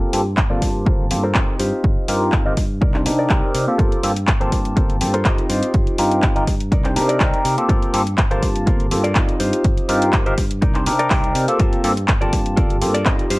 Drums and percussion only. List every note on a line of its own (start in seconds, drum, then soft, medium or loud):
0.13 open hi-hat loud
0.37 kick loud
0.37 clap loud
0.62 kick medium
0.62 open hi-hat loud
0.86 kick loud
1.11 open hi-hat loud
1.35 kick loud
1.35 clap loud
1.60 open hi-hat loud
1.84 kick loud
2.08 open hi-hat loud
2.32 kick loud
2.32 clap loud
2.57 kick medium
2.57 open hi-hat loud
2.82 kick loud
2.94 clap soft
3.06 open hi-hat loud
3.30 kick loud
3.30 clap loud
3.55 open hi-hat loud
3.79 kick loud
3.79 closed hi-hat soft
3.92 closed hi-hat soft
4.03 open hi-hat medium
4.16 closed hi-hat soft
4.27 kick loud
4.27 clap loud
4.27 closed hi-hat soft
4.41 closed hi-hat soft
4.52 kick medium
4.52 open hi-hat loud
4.65 closed hi-hat soft
4.77 kick loud
4.77 closed hi-hat soft
4.90 closed hi-hat soft
5.01 open hi-hat loud
5.14 closed hi-hat soft
5.25 kick loud
5.25 clap loud
5.25 closed hi-hat soft
5.38 closed hi-hat soft
5.50 open hi-hat loud
5.63 closed hi-hat soft
5.74 kick loud
5.74 closed hi-hat medium
5.87 closed hi-hat soft
5.98 open hi-hat loud
6.11 closed hi-hat soft
6.22 kick loud
6.22 clap loud
6.22 closed hi-hat soft
6.36 closed hi-hat soft
6.47 kick medium
6.47 open hi-hat loud
6.60 closed hi-hat soft
6.72 kick loud
6.72 closed hi-hat soft
6.84 clap soft
6.84 closed hi-hat soft
6.96 open hi-hat loud
7.09 closed hi-hat soft
7.20 kick loud
7.20 clap loud
7.20 closed hi-hat soft
7.34 closed hi-hat soft
7.45 open hi-hat medium
7.58 closed hi-hat soft
7.69 kick loud
7.69 closed hi-hat medium
7.82 closed hi-hat soft
7.94 open hi-hat medium
8.07 closed hi-hat soft
8.18 kick loud
8.18 clap loud
8.18 closed hi-hat medium
8.31 closed hi-hat soft
8.43 kick medium
8.43 open hi-hat medium
8.56 closed hi-hat medium
8.67 kick loud
8.67 closed hi-hat soft
8.80 closed hi-hat soft
8.91 open hi-hat medium
9.04 closed hi-hat medium
9.15 kick loud
9.15 clap loud
9.15 closed hi-hat medium
9.29 closed hi-hat soft
9.40 open hi-hat loud
9.53 closed hi-hat medium
9.64 kick loud
9.64 closed hi-hat medium
9.77 closed hi-hat soft
9.89 open hi-hat medium
10.02 closed hi-hat medium
10.13 kick loud
10.13 clap loud
10.13 closed hi-hat medium
10.26 closed hi-hat soft
10.38 kick medium
10.38 open hi-hat loud
10.51 closed hi-hat medium
10.62 kick loud
10.62 closed hi-hat medium
10.75 clap soft
10.75 closed hi-hat soft
10.86 open hi-hat loud
10.99 closed hi-hat medium
11.10 kick loud
11.10 clap loud
11.10 open hi-hat medium
11.24 closed hi-hat soft
11.35 open hi-hat medium
11.48 closed hi-hat medium
11.60 kick loud
11.60 closed hi-hat medium
11.73 closed hi-hat soft
11.84 open hi-hat loud
11.97 closed hi-hat medium
12.08 kick loud
12.08 clap loud
12.08 closed hi-hat medium
12.22 closed hi-hat soft
12.33 kick medium
12.33 open hi-hat loud
12.46 closed hi-hat medium
12.57 kick loud
12.57 closed hi-hat medium
12.70 closed hi-hat soft
12.82 open hi-hat loud
12.95 closed hi-hat medium
13.06 kick loud
13.06 clap loud
13.06 closed hi-hat medium
13.19 closed hi-hat soft
13.30 open hi-hat loud